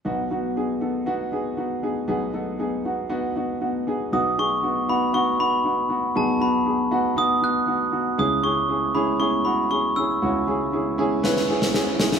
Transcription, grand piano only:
<<
  \new Staff \with { instrumentName = "Grand piano" } { \time 4/4 \key b \mixolydian \tempo 4 = 118 <b dis' fis'>8 <b dis' fis'>8 <b dis' gis'>8 <b dis' a'>8 <b dis' fis'>8 <b dis' gis'>8 <b dis' fis'>8 <b dis' gis'>8 | <b dis' gis'>8 <b dis' a'>8 <b dis' gis'>8 <b dis' fis'>8 <b dis' fis'>8 <b dis' fis'>8 <b dis' fis'>8 <b dis' gis'>8 | <b dis' fis'>8 <b dis' gis'>8 <b dis' fis'>8 <b dis' fis'>8 <b dis' fis'>8 <b dis' fis'>8 <b dis' fis'>8 <b dis' fis'>8 | <b dis' gis'>8 <b dis' fis'>8 <b dis' gis'>8 <b dis' fis'>8 <b dis' fis'>8 <b dis' fis'>8 <b dis' fis'>8 <b dis' fis'>8 |
<cis' e' gis'>8 <cis' e' gis'>8 <cis' e' gis'>8 <cis' e' gis'>8 <cis' e' gis'>8 <cis' e' fis'>8 <cis' e' gis'>8 <cis' e' gis'>8 | <cis' e' fis'>8 <cis' e' gis'>8 <cis' e' gis'>8 <cis' e' gis'>8 <cis' e' b'>8 <cis' e' gis'>8 <cis' e' gis'>8 <cis' e' gis'>8 | }
  \new Staff \with { instrumentName = "Grand piano" } { \clef bass \time 4/4 \key b \mixolydian <b,, b,>1 | <b,, b,>1 | <b,, b,>1 | <b,, b,>1 |
<cis, cis>1 | <cis, cis>1 | }
>>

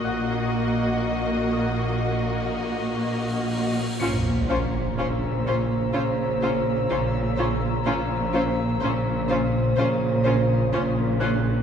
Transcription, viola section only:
\new Staff \with { instrumentName = "Viola section" } { \time 4/4 \key bes \minor \tempo 4 = 62 bes1 | des'8 des'8 des'8 des'8 des'8 des'8 des'8 des'8 | des'8 des'8 des'8 des'8 des'8 des'8 des'8 des'8 | }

